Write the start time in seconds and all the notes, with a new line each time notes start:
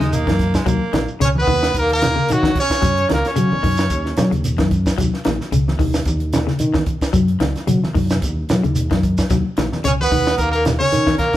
Already playing: G#3 D#4 D#5
0.00 D#2 C#3, snare, closed hi-hat, shekere
0.13 A#3, closed hi-hat, shekere
0.27 F#2 D#3, kick, snare, closed hi-hat, high conga
0.39 kick, snare, closed hi-hat, shekere
0.54 G#3, kick, snare, closed hi-hat, shekere
0.66 D#2 F#3 A#3, kick, closed hi-hat, low conga, shekere
0.93 A#1 D#3, snare, closed hi-hat, high conga
1.08 shekere
1.20 C#2 C#3 C#5, closed hi-hat, shekere
1.25 C#4
1.35 B4, high conga
1.41 B3
1.47 D#2 D#3, kick, open hi-hat, low conga, shekere
1.63 snare, shekere
1.74 D#2, kick, closed hi-hat, shekere
1.78 A#3 A#4
1.89 closed hi-hat
1.93 A#3 A#4
2.01 snare, closed hi-hat, high conga, shekere
2.16 C#3, shekere
2.29 D#3 F#4, closed hi-hat, shekere
2.34 F#3
2.43 D#3, kick, snare, high conga
2.55 kick, closed hi-hat, shekere
2.60 C#4 C#5
2.70 kick, snare, closed hi-hat, shekere
2.82 F#2 F#3, kick, closed hi-hat, low conga, shekere
2.97 closed hi-hat
3.09 C#2 D#3, snare, closed hi-hat, high conga
3.14 A#3 A#4
3.25 C#5, muted fingered electric bass stroke, snare, closed hi-hat, shekere
3.30 C#4
3.36 C#3 F#3, closed hi-hat, shekere
3.52 high conga
3.63 F#2 D#3, kick, open hi-hat, low conga, shekere
3.77 snare, closed hi-hat, shekere
3.90 D#2, kick, closed hi-hat, shekere
4.06 snare
4.17 F#3, snare, closed hi-hat, high conga, shekere
4.31 D#2 C#3, closed hi-hat, shekere
4.44 closed hi-hat, shekere
4.58 F#2 D#3, kick, snare, closed hi-hat, high conga
4.71 kick, closed hi-hat, shekere
4.86 kick, snare, closed hi-hat, shekere
4.98 D#2 F#3, kick, closed hi-hat, low conga, shekere
5.14 snare
5.25 A#1 D#3, snare, closed hi-hat, high conga
5.41 snare, shekere
5.52 C#2 C#3, closed hi-hat, shekere
5.68 snare, high conga
5.79 D#2 D#3, kick, open hi-hat, low conga, shekere
5.94 snare, low conga, shekere
6.05 D#2, kick, closed hi-hat, high conga, shekere
6.20 closed hi-hat
6.33 snare, closed hi-hat, high conga, shekere
6.47 C#3, snare, shekere
6.59 D#3, closed hi-hat, shekere
6.74 D#3, kick, snare, high conga
6.86 kick, closed hi-hat, shekere
7.01 kick, snare, closed hi-hat, shekere
7.13 F#2 F#3, kick, closed hi-hat, low conga, shekere
7.28 closed hi-hat
7.40 C#2 D#3, snare, closed hi-hat, high conga
7.56 snare, closed hi-hat, shekere
7.67 C#3 F#3, closed hi-hat, shekere
7.84 snare, high conga
7.95 F#2 D#3, kick, open hi-hat, low conga, shekere
8.10 snare, closed hi-hat, low conga, shekere
8.22 D#2, kick, closed hi-hat, high conga, shekere
8.49 F#3, snare, closed hi-hat, high conga, shekere
8.63 D#2 C#3, closed hi-hat, shekere
8.75 closed hi-hat, shekere
8.91 F#2 D#3, kick, snare, closed hi-hat, high conga
9.03 kick, closed hi-hat, shekere
9.18 kick, snare, closed hi-hat, shekere
9.30 D#2 F#3, kick, snare, closed hi-hat, low conga, shekere
9.57 A#1 D#3, snare, closed hi-hat, high conga
9.72 snare, high conga, shekere
9.84 C#2 C#3 C#4 C#5, closed hi-hat, shekere
10.00 B3 B4, high conga
10.11 D#2 D#3, kick, open hi-hat, low conga, shekere
10.27 snare, shekere
10.38 D#2 A#3 A#4, kick, closed hi-hat, shekere
10.52 A#3 A#4, closed hi-hat
10.65 snare, closed hi-hat, high conga, shekere
10.79 C#3 C#4 C#5, shekere
10.92 D#3, closed hi-hat, shekere
11.07 D#3, kick, snare, high conga
11.18 A#3 A#4, kick, snare, closed hi-hat, shekere
11.33 kick, closed hi-hat